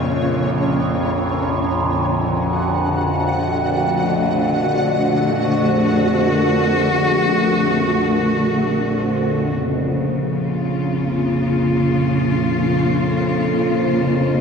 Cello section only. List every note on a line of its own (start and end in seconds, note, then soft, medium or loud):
0.00 1.97 C#3 medium
0.00 1.97 A#3 medium
0.00 1.96 F4 medium
1.98 9.57 D3 medium
3.52 9.56 A3 medium
5.28 9.56 F#4 medium
9.58 14.41 C#3 medium
10.36 14.41 F4 medium
11.02 14.41 A#3 medium